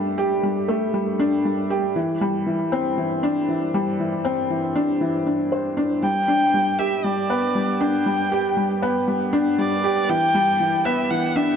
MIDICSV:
0, 0, Header, 1, 3, 480
1, 0, Start_track
1, 0, Key_signature, 1, "major"
1, 0, Tempo, 508475
1, 1847, Time_signature, 4, 2, 24, 8
1, 10917, End_track
2, 0, Start_track
2, 0, Title_t, "Violin"
2, 0, Program_c, 0, 40
2, 5694, Note_on_c, 0, 79, 114
2, 6410, Note_on_c, 0, 76, 96
2, 6425, Note_off_c, 0, 79, 0
2, 6651, Note_on_c, 0, 74, 100
2, 6666, Note_off_c, 0, 76, 0
2, 7374, Note_on_c, 0, 79, 107
2, 7388, Note_off_c, 0, 74, 0
2, 8331, Note_off_c, 0, 79, 0
2, 9053, Note_on_c, 0, 74, 107
2, 9529, Note_on_c, 0, 79, 127
2, 9544, Note_off_c, 0, 74, 0
2, 10246, Note_on_c, 0, 76, 105
2, 10260, Note_off_c, 0, 79, 0
2, 10483, Note_on_c, 0, 78, 111
2, 10497, Note_off_c, 0, 76, 0
2, 10723, Note_on_c, 0, 76, 97
2, 10737, Note_off_c, 0, 78, 0
2, 10917, Note_off_c, 0, 76, 0
2, 10917, End_track
3, 0, Start_track
3, 0, Title_t, "Felt piano"
3, 0, Program_c, 1, 0
3, 0, Control_c, 1, 64, 127
3, 0, Note_on_c, 1, 55, 85
3, 0, Note_on_c, 1, 57, 104
3, 0, Note_on_c, 1, 62, 100
3, 0, Note_on_c, 1, 67, 106
3, 156, Note_off_c, 1, 55, 0
3, 168, Note_off_c, 1, 67, 0
3, 168, Note_on_c, 1, 67, 104
3, 396, Note_off_c, 1, 67, 0
3, 409, Note_on_c, 1, 55, 78
3, 636, Note_off_c, 1, 55, 0
3, 646, Note_off_c, 1, 57, 0
3, 646, Note_on_c, 1, 57, 104
3, 875, Note_off_c, 1, 57, 0
3, 886, Note_on_c, 1, 55, 86
3, 1115, Note_off_c, 1, 55, 0
3, 1127, Note_off_c, 1, 62, 0
3, 1127, Note_on_c, 1, 62, 107
3, 1355, Note_off_c, 1, 62, 0
3, 1370, Note_on_c, 1, 55, 76
3, 1596, Note_off_c, 1, 55, 0
3, 1607, Note_on_c, 1, 67, 98
3, 1835, Note_off_c, 1, 67, 0
3, 1848, Note_on_c, 1, 52, 87
3, 1861, Control_c, 1, 64, 0
3, 2003, Control_c, 1, 64, 127
3, 2076, Note_off_c, 1, 52, 0
3, 2089, Note_on_c, 1, 55, 102
3, 2316, Note_off_c, 1, 55, 0
3, 2327, Note_on_c, 1, 52, 79
3, 2555, Note_off_c, 1, 52, 0
3, 2569, Note_on_c, 1, 60, 110
3, 2796, Note_off_c, 1, 60, 0
3, 2810, Note_on_c, 1, 52, 87
3, 3037, Note_off_c, 1, 52, 0
3, 3050, Note_on_c, 1, 62, 114
3, 3277, Note_off_c, 1, 62, 0
3, 3289, Note_on_c, 1, 52, 74
3, 3516, Note_off_c, 1, 52, 0
3, 3533, Note_on_c, 1, 55, 102
3, 3758, Note_off_c, 1, 55, 0
3, 3773, Note_on_c, 1, 52, 75
3, 3998, Note_off_c, 1, 52, 0
3, 4008, Note_on_c, 1, 60, 109
3, 4236, Note_off_c, 1, 60, 0
3, 4251, Note_on_c, 1, 52, 74
3, 4477, Note_off_c, 1, 52, 0
3, 4488, Note_on_c, 1, 62, 108
3, 4716, Note_off_c, 1, 62, 0
3, 4729, Note_on_c, 1, 52, 81
3, 4956, Note_off_c, 1, 52, 0
3, 4970, Note_on_c, 1, 62, 77
3, 5197, Note_off_c, 1, 62, 0
3, 5211, Note_on_c, 1, 72, 74
3, 5346, Note_off_c, 1, 72, 0
3, 5448, Note_on_c, 1, 62, 100
3, 5675, Note_off_c, 1, 62, 0
3, 5690, Note_on_c, 1, 55, 74
3, 5701, Control_c, 1, 64, 0
3, 5849, Control_c, 1, 64, 127
3, 5917, Note_off_c, 1, 55, 0
3, 5929, Note_on_c, 1, 62, 97
3, 6156, Note_off_c, 1, 62, 0
3, 6174, Note_on_c, 1, 55, 78
3, 6398, Note_off_c, 1, 55, 0
3, 6410, Note_on_c, 1, 67, 102
3, 6637, Note_off_c, 1, 67, 0
3, 6649, Note_on_c, 1, 55, 79
3, 6876, Note_off_c, 1, 55, 0
3, 6890, Note_on_c, 1, 59, 103
3, 7116, Note_off_c, 1, 59, 0
3, 7128, Note_on_c, 1, 55, 73
3, 7356, Note_off_c, 1, 55, 0
3, 7369, Note_on_c, 1, 62, 104
3, 7596, Note_off_c, 1, 62, 0
3, 7610, Note_on_c, 1, 55, 82
3, 7836, Note_off_c, 1, 55, 0
3, 7851, Note_on_c, 1, 67, 102
3, 8077, Note_off_c, 1, 67, 0
3, 8088, Note_on_c, 1, 55, 80
3, 8316, Note_off_c, 1, 55, 0
3, 8331, Note_on_c, 1, 59, 110
3, 8557, Note_off_c, 1, 59, 0
3, 8570, Note_on_c, 1, 55, 80
3, 8797, Note_off_c, 1, 55, 0
3, 8806, Note_on_c, 1, 62, 115
3, 9035, Note_off_c, 1, 62, 0
3, 9048, Note_on_c, 1, 55, 70
3, 9276, Note_off_c, 1, 55, 0
3, 9287, Note_on_c, 1, 67, 99
3, 9515, Note_off_c, 1, 67, 0
3, 9528, Note_on_c, 1, 52, 82
3, 9538, Control_c, 1, 64, 0
3, 9708, Control_c, 1, 64, 127
3, 9756, Note_off_c, 1, 52, 0
3, 9767, Note_on_c, 1, 55, 102
3, 9995, Note_off_c, 1, 55, 0
3, 10006, Note_on_c, 1, 52, 73
3, 10234, Note_off_c, 1, 52, 0
3, 10246, Note_on_c, 1, 59, 109
3, 10475, Note_off_c, 1, 59, 0
3, 10484, Note_on_c, 1, 52, 83
3, 10714, Note_off_c, 1, 52, 0
3, 10722, Note_on_c, 1, 62, 103
3, 10917, Note_off_c, 1, 62, 0
3, 10917, End_track
0, 0, End_of_file